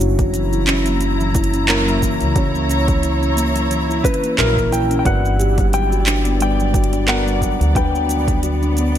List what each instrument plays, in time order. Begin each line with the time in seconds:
Already playing: upright bass F#1, string section F#3, felt piano A#3 C#4 E4 F#4 C#5
0.00 steel tongue drum F#4, closed hi-hat, shaker
0.19 steel tongue drum F#3, string section A#5, kick, closed hi-hat, shaker
0.27 string section E4
0.34 steel tongue drum E3, closed hi-hat, shaker
0.53 steel tongue drum E4, shaker
0.67 steel tongue drum C#4, clap, closed hi-hat, shaker
0.86 steel tongue drum A#3, closed hi-hat, shaker
1.01 steel tongue drum F#3, closed hi-hat, shaker
1.20 steel tongue drum E3, shaker
1.34 steel tongue drum E4, kick, closed hi-hat, shaker
1.44 closed hi-hat
1.54 steel tongue drum C#4, string section C#5, closed hi-hat, shaker
1.67 felt piano A#3 C#4 E4 F#4 A#4, steel tongue drum A#3, clap, closed hi-hat, shaker
1.87 steel tongue drum F#3, shaker
2.02 steel tongue drum E3, kick, closed hi-hat, shaker
2.20 upright bass C#2, steel tongue drum E4, closed hi-hat, shaker
2.34 felt piano A#3 C#4 E4 F#4 C#5, steel tongue drum C#4, kick, closed hi-hat, shaker
2.54 steel tongue drum A#3, shaker
2.69 steel tongue drum C#4, closed hi-hat, shaker
2.88 steel tongue drum E3, kick, closed hi-hat, shaker
3.03 steel tongue drum E4, closed hi-hat, shaker
3.22 steel tongue drum C#4, shaker
3.37 steel tongue drum A#3, closed hi-hat, shaker
3.56 steel tongue drum F#3, closed hi-hat, shaker
3.71 steel tongue drum E3, closed hi-hat, shaker
3.89 steel tongue drum E4, shaker
4.04 steel tongue drum C#4, electric slide guitar B4, kick, closed hi-hat, shaker
4.14 closed hi-hat
4.23 steel tongue drum A#3, closed hi-hat, shaker
4.37 upright bass A#1, steel tongue drum F#3, felt piano A#3 C#4 E4 F#4 A#4, electric slide guitar A#4, clap, closed hi-hat, shaker
4.57 steel tongue drum E3, kick, shaker
4.72 steel tongue drum E4, electric slide guitar G5, closed hi-hat, shaker
4.91 steel tongue drum C#4, closed hi-hat, shaker
4.99 electric slide guitar G5
5.05 upright bass G1, felt piano B3 D4 B4 D5, steel tongue drum F#4, electric slide guitar F#5, kick, closed hi-hat, shaker
5.24 steel tongue drum D4, shaker
5.39 steel tongue drum G4, closed hi-hat, shaker
5.48 string section D5
5.58 steel tongue drum G3, kick, closed hi-hat, shaker
5.69 string section B3
5.73 steel tongue drum F#3, electric slide guitar G5, closed hi-hat, shaker
5.92 steel tongue drum F#4, shaker
6.06 steel tongue drum D4, clap, closed hi-hat, shaker
6.25 steel tongue drum B3, closed hi-hat, shaker
6.40 steel tongue drum G3, electric slide guitar G5, closed hi-hat, shaker
6.60 steel tongue drum F#3, shaker
6.74 steel tongue drum F#4, kick, closed hi-hat, shaker
6.84 closed hi-hat
6.93 steel tongue drum D4, closed hi-hat, shaker
7.07 felt piano B3 D4 F#4 A#4, steel tongue drum B3, electric slide guitar F#5, clap, closed hi-hat, shaker
7.27 steel tongue drum G3, shaker
7.42 steel tongue drum F#3, kick, closed hi-hat, shaker
7.60 upright bass D2, steel tongue drum F#4, closed hi-hat, shaker
7.74 felt piano F#3 B3 D4 B4, steel tongue drum D4, electric slide guitar G5, kick, closed hi-hat, shaker
7.95 steel tongue drum B3, shaker
8.09 steel tongue drum D4, closed hi-hat, shaker
8.28 steel tongue drum F#3, kick, closed hi-hat, shaker
8.43 steel tongue drum F#4, closed hi-hat, shaker
8.62 steel tongue drum D4, shaker
8.77 steel tongue drum B3, closed hi-hat, shaker